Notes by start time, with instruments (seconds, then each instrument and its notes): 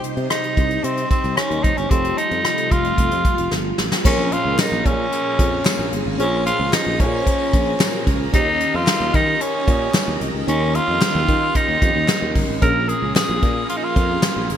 Already playing: fm electric piano C3 C4 D#4 G4 C5, string machine G3 D#4 C5
0.04 closed hi-hat
0.17 fretless electric bass C3, closed hi-hat
0.30 tenor saxophone D#4, cross-stick, closed hi-hat
0.43 closed hi-hat
0.57 fretless electric bass C2, kick, closed hi-hat
0.70 closed hi-hat
0.84 fretless electric bass C3, tenor saxophone C4, closed hi-hat
0.97 closed hi-hat
1.11 tenor saxophone C4, kick, closed hi-hat
1.24 fretless electric bass C2, closed hi-hat
1.37 tenor saxophone C#4, cross-stick, closed hi-hat
1.51 fretless electric bass D#2, closed hi-hat
1.63 fretless electric bass F1, tenor saxophone D#4, kick, closed hi-hat
1.77 fretless electric bass G1, tenor saxophone C#4, closed hi-hat
1.90 fretless electric bass F1, string machine C3 F3 A3 F4, fm electric piano C4 F4 G4 A4, tenor saxophone C4, kick, closed hi-hat
2.04 closed hi-hat
2.18 tenor saxophone D#4, closed hi-hat
2.31 fretless electric bass F2, closed hi-hat
2.44 cross-stick, closed hi-hat
2.57 closed hi-hat
2.71 fretless electric bass F1, tenor saxophone F4, kick, closed hi-hat
2.84 closed hi-hat
2.98 fretless electric bass F1, kick, closed hi-hat
3.11 fretless electric bass F2, closed hi-hat
3.25 kick, closed hi-hat
3.38 fretless electric bass F1, closed hi-hat
3.51 fretless electric bass G1, snare
3.78 fretless electric bass A1, snare
3.92 snare
4.04 fretless electric bass A#1, overdriven electric guitar A#2 F3 A#3, fm electric piano A#2 C4 F4 G#4 A#4, string machine C#4 G#4 F5 A#5, tenor saxophone C#4, kick, crash
4.10 fm electric piano C#4
4.32 tenor saxophone F4, closed hi-hat
4.45 fretless electric bass C#2
4.58 tenor saxophone D#4, snare, clap, closed hi-hat, tambourine
4.72 fretless electric bass A#1
4.85 fretless electric bass A#2, tenor saxophone C#4, kick, closed hi-hat
5.12 overdriven electric guitar A#2 F3 A#3, closed hi-hat
5.39 fretless electric bass F2, kick, closed hi-hat
5.65 overdriven electric guitar A#2 F3 A#3, snare, clap, closed hi-hat, tambourine
5.79 fretless electric bass A#1
5.92 fretless electric bass G1, closed hi-hat
6.06 fretless electric bass G#1
6.18 fretless electric bass A#1, overdriven electric guitar A#2 F3 A#3, fm electric piano A#2 C#4 F4 G#4 C5, tenor saxophone C#4, closed hi-hat
6.46 tenor saxophone F4, closed hi-hat
6.60 fretless electric bass C#2
6.73 tenor saxophone D#4, snare, clap, closed hi-hat, tambourine
6.87 fretless electric bass A#1
6.99 fretless electric bass A#2, overdriven electric guitar F3 A#3, tenor saxophone C#4, kick, closed hi-hat
7.26 overdriven electric guitar A#2 F3 A#3, kick, closed hi-hat
7.53 fretless electric bass A#1, kick, closed hi-hat
7.79 overdriven electric guitar A#2 F3 A#3, snare, clap, closed hi-hat, tambourine
8.07 fretless electric bass C#2, kick, closed hi-hat
8.32 fretless electric bass D#2, overdriven electric guitar D#3 A#3 D#4, fm electric piano D#3 C#4 D#4 G4 A#4, tenor saxophone D#4, string machine G4 D#5, kick, closed hi-hat
8.60 closed hi-hat
8.74 fretless electric bass F2, tenor saxophone F4
8.87 snare, clap, closed hi-hat, tambourine
9.00 fretless electric bass D#2
9.14 fretless electric bass D#3, tenor saxophone D#4, kick, closed hi-hat
9.40 overdriven electric guitar D#3 A#3 D#4, tenor saxophone C#4, closed hi-hat
9.68 fretless electric bass A#2, kick, closed hi-hat
9.94 snare, clap, closed hi-hat, tambourine
10.08 fretless electric bass D#2
10.21 fretless electric bass C2, closed hi-hat
10.35 fretless electric bass C#2
10.47 fretless electric bass D#2, overdriven electric guitar D#3 A#3 D#4, fm electric piano D#3 C#4 D#4 G4 A#4, tenor saxophone C#4, string machine C6, closed hi-hat
10.75 tenor saxophone F4, closed hi-hat
10.88 fretless electric bass F2
11.01 snare, clap, closed hi-hat, tambourine
11.15 fretless electric bass D#2
11.28 fretless electric bass D#3, kick, closed hi-hat
11.55 overdriven electric guitar D#3 A#3 D#4, tenor saxophone D#4, kick, closed hi-hat
11.69 fretless electric bass D#2
11.82 fretless electric bass F2, kick, closed hi-hat
11.96 fretless electric bass D#2
12.08 overdriven electric guitar D#3 A#3 D#4, snare, clap, closed hi-hat, tambourine
12.22 fretless electric bass D#2
12.35 fretless electric bass G1, kick, open hi-hat
12.49 fretless electric bass G#1
12.61 fretless electric bass A#1, overdriven electric guitar A#2 F3 A#3, fm electric piano A#2 C#4 F4 G#4 A#4, string machine G#4 F5 A#5, tenor saxophone A#4, kick, closed hi-hat
12.89 tenor saxophone G#4, closed hi-hat
13.02 fretless electric bass C#2
13.16 tenor saxophone G#4, snare, clap, closed hi-hat, tambourine
13.29 fretless electric bass A#1
13.42 fretless electric bass A#2, overdriven electric guitar F3 A#3, kick, closed hi-hat
13.69 overdriven electric guitar A#2 F3 A#3, tenor saxophone F4, closed hi-hat
13.77 tenor saxophone D#4
13.84 tenor saxophone F4
13.96 fretless electric bass F2, kick, closed hi-hat
14.22 overdriven electric guitar A#2 F3 A#3, snare, clap, closed hi-hat, tambourine
14.36 fretless electric bass A#1
14.49 fretless electric bass G1, closed hi-hat